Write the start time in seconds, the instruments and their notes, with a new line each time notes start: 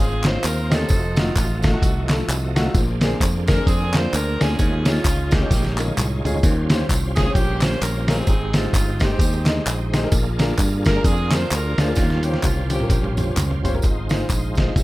Already playing: fingered electric bass G#1, tonewheel organ C4 F4 C5 D#5
0.00 saxophone section C4 F4 G#4
0.24 grand piano C4 C#4 D#4 F4, saxophone section C5, snare, clap, closed hi-hat, tambourine
0.44 fingered electric bass D#2, saxophone section A#4, clap, closed hi-hat, tambourine
0.70 grand piano C4 C#4 D#4 G4, saxophone section C4 D#4 A4, snare, closed hi-hat, tambourine
0.79 grand piano C4 C#4 D#4 G4
0.89 fingered electric bass F1, tonewheel organ F3 G#3 F#4 D#5, kick, closed hi-hat, tambourine
0.95 tonewheel organ A3
1.16 grand piano A3 D#4 F4 F#4, saxophone section F4, snare, closed hi-hat, tambourine
1.36 fingered electric bass A1, saxophone section F4, kick, clap, closed hi-hat, tambourine
1.62 grand piano A3 D#4 F4 A4, saxophone section A3 D#4 F#4, kick, snare, closed hi-hat, tambourine
1.73 grand piano A3 D#4 F4 A4
1.82 fingered electric bass C2, kick, closed hi-hat, tambourine
2.09 grand piano A3 D#4 F4 A4, snare, clap, closed hi-hat, tambourine
2.28 fingered electric bass C2, tonewheel organ D#5, clap, closed hi-hat, tambourine
2.55 grand piano A3 D#4 F4 F#4, snare, closed hi-hat, tambourine
2.65 grand piano A3 D#4 F4 F#4
2.74 fingered electric bass A#1, grand piano A#2, tonewheel organ A#3 C4 G#4 C5, kick, closed hi-hat, tambourine
2.82 tonewheel organ D4
3.01 grand piano A#3 C4 D4 G#4, snare, closed hi-hat, tambourine
3.20 fingered electric bass F2, kick, clap, closed hi-hat, tambourine
3.47 grand piano A#3 C4 D4 G#4, saxophone section A#4, kick, snare, closed hi-hat, tambourine
3.57 grand piano A#3 C4 D4 G#4
3.67 fingered electric bass F2, saxophone section C4 D4 G#4, kick, closed hi-hat, tambourine
3.93 grand piano A#3 C4 D4 F4, saxophone section C5, snare, clap, closed hi-hat, tambourine
4.13 fingered electric bass D2, saxophone section A#4, clap, closed hi-hat, tambourine
4.40 fingered electric bass D2, grand piano A#3 C4 D4 G#4, saxophone section C#4 F4 G#4, snare, closed hi-hat, tambourine
4.49 grand piano A#3 C4 D4 G#4
4.59 fingered electric bass D#2, grand piano D#3, tonewheel organ G#3 D#4 F4 C#5, kick, closed hi-hat, tambourine
4.85 grand piano C#4 D#4 F4 G#4, saxophone section F4, snare, closed hi-hat, tambourine
5.04 fingered electric bass C#2, saxophone section F4, kick, clap, closed hi-hat, tambourine
5.31 saxophone section A#3 C#4 G4, grand piano C#4 D#4 F4 G#4, kick, snare, closed hi-hat, tambourine
5.41 grand piano C#4 D#4 F4 G4
5.51 fingered electric bass A#1, kick, snare, closed hi-hat, tambourine
5.65 snare
5.78 grand piano C#4 D#4 F4 A#4, clap, closed hi-hat, tambourine
5.88 high tom
5.97 fingered electric bass C2, clap, closed hi-hat, mid tom, tambourine
6.24 fingered electric bass D2, grand piano C#4 D#4 F4 G#4, closed hi-hat, floor tom, tambourine
6.34 grand piano C#4 D#4 F4 G#4, floor tom
6.43 fingered electric bass D#2, grand piano D#3, tonewheel organ F3 C#4 F4 C5, kick, closed hi-hat, tambourine
6.50 tonewheel organ G3
6.70 grand piano C#4 F4 G4 C5, snare, closed hi-hat, tambourine
6.89 fingered electric bass C2, kick, clap, closed hi-hat, tambourine
7.16 grand piano C#4 F4 G4 C5, saxophone section G#4, kick, snare, closed hi-hat, tambourine
7.27 grand piano C#4 F4 G4 C#5
7.34 fingered electric bass A#1, saxophone section A#3 C#4 G4, kick, closed hi-hat, tambourine
7.61 grand piano C#4 F4 G4 C#5, saxophone section C5, snare, clap, closed hi-hat, tambourine
7.82 fingered electric bass A#1, saxophone section A#4, clap, closed hi-hat, tambourine
8.08 saxophone section C4 D#4 G#4, grand piano C#4 F4 G4 A#4, snare, closed hi-hat, tambourine
8.18 grand piano C#4 F4 G4 C5
8.27 fingered electric bass G#1, grand piano G#2, tonewheel organ G#3 D#4 G4 C5, kick, closed hi-hat, tambourine
8.53 grand piano D#4 G4 G#4 C5, saxophone section F4, snare, closed hi-hat, tambourine
8.73 fingered electric bass G1, saxophone section F4, kick, clap, closed hi-hat, tambourine
9.00 saxophone section C4 D#4 G4, grand piano D#4 G4 G#4 C5, kick, snare, closed hi-hat, tambourine
9.10 grand piano D#4 G4 G#4 C5
9.19 fingered electric bass D#2, kick, closed hi-hat, tambourine
9.46 grand piano D#4 G4 G#4 D#5, snare, clap, closed hi-hat, tambourine
9.66 fingered electric bass A#1, clap, closed hi-hat, tambourine
9.93 grand piano D#4 G4 G#4 C5, snare, closed hi-hat, tambourine
10.03 grand piano D#4 G4 G#4 A#4
10.12 fingered electric bass A#1, grand piano A#2, tonewheel organ D4 F4 G#4 A4, kick, closed hi-hat, tambourine
10.18 tonewheel organ A#4
10.39 grand piano D4 F4 G#4 A#4, snare, closed hi-hat, tambourine
10.58 fingered electric bass G2, kick, clap, closed hi-hat, tambourine
10.85 grand piano D4 F4 G#4 A#4, saxophone section A#4, kick, snare, closed hi-hat, tambourine
10.96 grand piano D4 F4 G#4 A#4
11.04 fingered electric bass F2, saxophone section D4 F4 G#4, kick, closed hi-hat, tambourine
11.31 grand piano D4 F4 G#4 A#4, saxophone section C5, snare, clap, closed hi-hat, tambourine
11.51 fingered electric bass D2, saxophone section A#4, clap, closed hi-hat, tambourine
11.78 fingered electric bass D2, saxophone section A#3 C#4 F4, grand piano D4 F4 G#4 C5, snare, closed hi-hat, tambourine
11.88 grand piano D4 F4 G#4 A#4
11.95 fingered electric bass D#2, grand piano D#3, tonewheel organ G3 C#4 F4 C5, kick, snare, closed hi-hat, tambourine
12.10 snare
12.23 grand piano C#4 F4 G4 C5, saxophone section G4, closed hi-hat, tambourine
12.34 snare
12.43 fingered electric bass C2, saxophone section F4, kick, clap, closed hi-hat, high tom, tambourine
12.70 saxophone section A#3 C#4 G4, grand piano C#4 F4 G4 C5, closed hi-hat, high tom, tambourine
12.80 grand piano C#4 F4 G4 A#4, mid tom
12.90 fingered electric bass A#1, kick, closed hi-hat, tambourine
13.04 mid tom
13.17 grand piano C#4 F4 G4 C5, closed hi-hat, mid tom, tambourine
13.37 fingered electric bass C#2, clap, closed hi-hat, mid tom, tambourine
13.51 floor tom
13.63 fingered electric bass G1, grand piano C#4 F4 G4 C5, closed hi-hat, floor tom, tambourine
13.73 grand piano C#4 F4 G4 A#4, floor tom
13.82 fingered electric bass G#1, grand piano G#2, tonewheel organ G#3 D#4 F4 C5, kick, closed hi-hat, tambourine
14.09 grand piano D#4 F4 G#4 C5, snare, closed hi-hat, tambourine
14.29 fingered electric bass A#1, kick, clap, closed hi-hat, tambourine
14.55 grand piano D#4 F4 G#4 C5, kick, snare, closed hi-hat, tambourine
14.67 grand piano D#4 F4 G#4 D#5
14.76 fingered electric bass C2, grand piano C3, tonewheel organ C4 E4 A#4 C#5, kick, closed hi-hat, tambourine